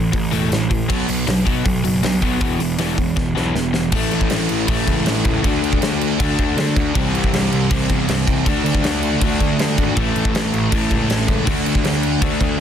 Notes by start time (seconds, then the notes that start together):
Already playing: A1 A2 E3
0.13 A1 A2 E3, kick, open hi-hat
0.32 E1 A2 E3 A3, open hi-hat
0.52 A1 A2 E3, snare, open hi-hat
0.71 A1 A2 E3, kick, open hi-hat
0.90 B1 B2 F#3 B3, kick, crash
1.08 B1 B2 F#3, open hi-hat
1.27 B1 B2 F#3, snare, open hi-hat
1.46 B1 B2 F#3 B3, kick, open hi-hat
1.64 B1 B2 F#3, kick, open hi-hat
1.83 F#1 B2 F#3, open hi-hat
2.02 B1 B2 F#3, snare, open hi-hat
2.21 B1 B2 F#3 B3, kick, open hi-hat
2.39 E1 E2 B2 E3 B3 E4, kick, open hi-hat
2.59 E1 E2 B2 E3 B3, open hi-hat
2.77 E1 E2 B2 E3 B3 E4, snare, open hi-hat
2.98 E1 E2 B2 E3 B3, kick, open hi-hat
3.16 E1 E2 B2 E3 B3, kick, snare
3.35 B1 E2 B2 E3 B3 E4, snare
3.54 E1 E2 B2 E3 B3, snare
3.73 E1 E2 B2 E3 B3, snare
3.92 A1 A2 E3 A3 C#4 E4, kick, crash
4.11 A1, crash
4.21 kick
4.30 A1, snare, crash
4.49 A1, crash
4.67 A1 A2 E3 A3, kick, crash
4.87 C#2, kick, crash
5.06 A1, snare, crash
5.24 C#2 A2 E3 A3 C#4 E4, kick, crash
5.43 D2 D3 A3 D4 F#4, kick, crash
5.62 D2, crash
5.73 kick
5.82 D2, snare, crash
6.01 crash
6.19 D2 D3 A3 D4, kick, crash
6.39 D2, kick, crash
6.57 D3, snare, crash
6.76 D2 D3 A3 D4 F#4, kick, crash
6.94 C2 C3 E3 G3 C4 G4, kick, crash
7.14 C2, crash
7.24 kick
7.33 C2, snare, crash
7.52 C2, crash
7.70 C2 C3 G3 C4, kick, crash
7.90 E2, kick, crash
8.09 C2, snare, crash
8.27 C2 E3 G3 C4 G4, kick, crash
8.31 C3
8.45 D2 D3 A3 D4 F#4, kick, crash
8.64 D2, crash
8.75 kick
8.83 D2, snare, crash
9.03 crash
9.21 D2 D3 A3 D4, kick, crash
9.40 D2, kick, crash
9.58 D3, snare, crash
9.77 G#1 D3 A3 D4 F#4, kick, crash
9.96 A1 A2 E3 A3 C#4 E4, kick, crash
10.16 A1, crash
10.25 kick
10.34 A1, snare, crash
10.54 A1, crash
10.71 A1 A2 E3 A3, kick, crash
10.91 C#2, kick, crash
11.10 A1, snare, crash
11.28 C#2 A2 E3 A3 C#4 E4, kick, crash
11.47 D2 D3 A3 D4, kick, crash
11.51 F#4
11.66 D2, crash
11.75 kick
11.84 D2, snare, crash
12.03 crash
12.22 D2 D3 A3 D4, kick, crash
12.41 D2, kick, crash